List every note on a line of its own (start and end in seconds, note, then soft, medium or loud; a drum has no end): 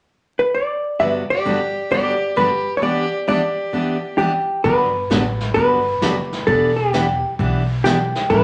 0.39 0.53 B4 medium
0.54 0.99 D5 medium
0.99 1.22 G2 soft
0.99 1.22 D3 soft
0.99 1.22 F#3 medium
0.99 1.22 B3 medium
0.99 1.23 D4 medium
0.99 1.23 G4 medium
0.99 1.14 B4 medium
0.99 1.08 E5 loud
1.30 1.88 G4 medium
1.30 1.90 D5 medium
1.45 1.57 G2 medium
1.45 1.57 D3 medium
1.45 1.57 F#3 medium
1.45 1.58 B3 medium
1.45 1.58 D4 medium
1.45 1.58 G4 medium
1.90 2.13 G2 soft
1.90 2.14 D3 soft
1.90 2.14 F#3 medium
1.90 2.14 B3 medium
1.90 2.14 D4 medium
1.90 2.14 G4 medium
1.90 2.34 G4 medium
1.90 2.34 D5 medium
2.36 2.48 G2 medium
2.36 2.49 D3 medium
2.36 2.49 F#3 medium
2.36 2.49 B3 medium
2.36 2.49 D4 medium
2.36 2.49 G4 medium
2.36 2.75 G4 medium
2.36 2.75 B4 medium
2.77 2.82 A4 medium
2.77 2.82 C#5 medium
2.81 3.04 E3 medium
2.81 3.05 B3 medium
2.81 3.05 D4 medium
2.81 3.05 G4 medium
2.81 3.25 G4 medium
2.81 3.27 D5 medium
3.27 3.40 E3 medium
3.27 3.40 B3 medium
3.27 3.40 D4 medium
3.27 3.40 G4 medium
3.27 4.16 G4 medium
3.27 4.16 D5 medium
3.73 3.96 E3 medium
3.73 3.96 B3 medium
3.73 3.96 D4 medium
3.73 3.96 G4 medium
4.18 4.31 E3 medium
4.18 4.31 B3 medium
4.18 4.31 D4 medium
4.18 4.61 G4 medium
4.18 4.31 G4 medium
4.64 5.02 G1 medium
4.64 4.87 D3 medium
4.64 4.87 F#3 medium
4.64 4.88 B3 medium
4.64 4.88 D4 medium
4.64 4.88 G4 medium
4.64 5.53 B4 loud
4.64 brush sweep soft
4.64 kick soft
5.10 5.49 A1 medium
5.10 5.22 D3 medium
5.10 5.22 F#3 medium
5.10 5.23 B3 medium
5.10 5.23 D4 medium
5.10 5.23 G4 medium
5.10 snare medium
5.10 hi-hat pedal medium
5.40 snare soft
5.54 5.95 G1 medium
5.54 5.78 D3 medium
5.54 5.79 F#3 medium
5.54 5.79 B3 medium
5.54 5.79 D4 medium
5.54 5.79 G4 medium
5.54 6.49 B4 loud
5.54 brush sweep soft
5.54 kick soft
6.02 6.41 F#1 medium
6.02 6.14 D3 medium
6.02 6.14 F#3 medium
6.02 6.14 B3 medium
6.02 6.14 D4 medium
6.02 6.14 G4 medium
6.02 snare medium
6.02 hi-hat pedal medium
6.32 snare soft
6.47 7.21 E1 medium
6.47 6.70 E3 medium
6.47 6.70 B3 medium
6.47 6.71 D4 medium
6.47 6.71 G4 medium
6.47 6.75 A4 medium
6.47 brush sweep soft
6.47 kick soft
6.76 7.34 G4 medium
6.93 7.05 E3 medium
6.93 7.05 B3 medium
6.93 7.06 D4 medium
6.93 7.06 G4 medium
6.93 snare medium
6.93 hi-hat pedal medium
7.39 8.12 B1 medium
7.39 7.61 E3 medium
7.39 7.62 B3 medium
7.39 7.62 D4 medium
7.39 7.62 G4 medium
7.39 brush sweep soft
7.39 kick soft
7.84 7.96 E3 medium
7.84 7.96 B3 medium
7.84 7.97 D4 medium
7.84 8.31 G4 medium
7.84 7.97 G4 medium
7.84 snare medium
7.84 hi-hat pedal medium
8.15 snare soft
8.30 8.44 A1 medium
8.30 8.44 E3 medium
8.30 8.44 G3 medium
8.30 8.44 C#4 medium
8.30 8.44 E4 medium
8.30 8.44 A4 medium
8.30 8.44 B4 loud
8.30 brush sweep medium
8.30 kick soft